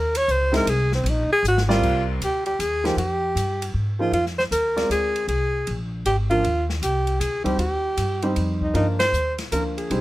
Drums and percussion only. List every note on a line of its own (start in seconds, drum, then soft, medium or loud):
0.15 ride medium
0.28 hi-hat pedal medium
0.54 snare medium
0.54 ride medium
0.67 ride medium
0.92 snare soft
1.06 ride medium
1.45 hi-hat pedal medium
1.58 snare medium
1.70 snare medium
1.83 kick medium
1.83 crash medium
2.22 hi-hat pedal soft
2.22 ride medium
2.46 ride soft
2.60 hi-hat pedal medium
2.60 ride medium
2.85 snare medium
2.85 ride soft
2.98 ride medium
3.37 hi-hat pedal medium
3.37 ride medium
3.62 ride medium
4.13 ride medium
4.26 snare soft
4.39 snare soft
4.52 hi-hat pedal medium
4.52 ride medium
4.77 snare soft
4.77 ride soft
4.91 hi-hat pedal medium
4.91 ride medium
5.16 ride soft
5.28 ride medium
5.67 ride medium
6.06 hi-hat pedal medium
6.06 ride medium
6.31 ride soft
6.44 ride soft
6.70 snare soft
6.83 hi-hat pedal medium
6.83 ride medium
7.07 ride soft
7.21 hi-hat pedal medium
7.21 ride medium
7.46 kick medium
7.46 ride soft
7.59 ride medium
7.97 hi-hat pedal soft
7.97 ride medium
8.22 ride soft
8.36 ride medium
8.61 kick soft
8.75 ride soft
9.00 snare medium
9.00 ride medium
9.13 hi-hat pedal medium
9.38 snare soft
9.38 ride soft
9.52 hi-hat pedal medium
9.52 ride medium
9.78 ride soft
9.91 ride medium